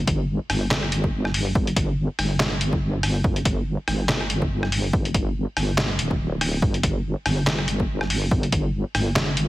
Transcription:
Already playing: G1
0.07 kick, closed hi-hat
0.50 G1, cross-stick, open hi-hat
0.71 snare, clap
0.83 cross-stick
0.92 closed hi-hat
1.04 kick
1.25 cross-stick
1.34 open hi-hat
1.55 G1, kick
1.67 closed hi-hat
1.76 kick, closed hi-hat
2.19 G1, cross-stick, open hi-hat
2.40 snare, clap
2.61 closed hi-hat
2.73 kick
3.03 cross-stick, open hi-hat
3.24 G1, kick
3.36 closed hi-hat
3.45 kick, closed hi-hat
3.88 G1, cross-stick, open hi-hat
4.09 snare, clap
4.21 cross-stick
4.30 closed hi-hat
4.42 kick
4.63 cross-stick
4.72 open hi-hat
4.93 G1, kick
5.05 closed hi-hat
5.14 kick, closed hi-hat
5.57 G1, cross-stick, open hi-hat
5.78 snare, clap
5.99 D1, closed hi-hat
6.11 kick
6.41 cross-stick, open hi-hat
6.62 G1, kick
6.74 closed hi-hat
6.83 kick, closed hi-hat
7.26 G1, cross-stick, open hi-hat
7.47 snare, clap
7.59 cross-stick
7.68 closed hi-hat
7.80 kick
8.01 cross-stick
8.10 open hi-hat
8.31 G1, kick
8.43 closed hi-hat
8.52 kick, closed hi-hat
8.95 G1, cross-stick, open hi-hat
9.16 snare, clap
9.37 closed hi-hat

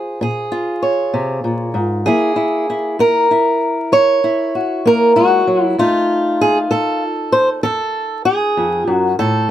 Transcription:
Already playing: F4 G#4 C5
0.21 A#2 G#4
0.52 F4
0.82 C#5
1.14 C3
1.44 A#2
1.74 G#2
2.06 F#3 A#3 E4 G#4
2.36 E4
2.70 E4
2.99 A#3 A#4
3.31 E4
3.92 F#3 C#5
4.24 E4
4.55 F#4
4.85 A#3 A#4
5.16 G#3 F#4
5.47 F#3
5.64 E4
5.78 F2 A3 D#4 F4
6.41 G#4
6.71 A3 A4
7.32 C5
7.63 F2 A4
8.25 G#4
8.57 F2
8.87 F#2
8.92 F#4
9.19 A2 A4

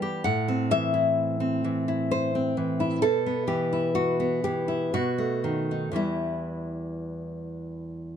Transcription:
Already playing: E3 G3 B3 G5
0.02 G4
0.24 A2 F#5
0.48 C4
0.71 E3 E5
0.94 E4
1.40 C4
1.64 E3
1.88 E4
2.11 C5
2.35 C4
2.57 E3
2.80 E4
3.02 B2 A4
3.26 B3
3.47 E3 G4
3.73 E4
3.95 F#4
4.20 B3
4.44 E3 G4
4.68 E4
4.94 B2 F#4
5.18 A3
5.44 D#3
5.71 D#4
5.92 E2 E3 G3
5.96 E4

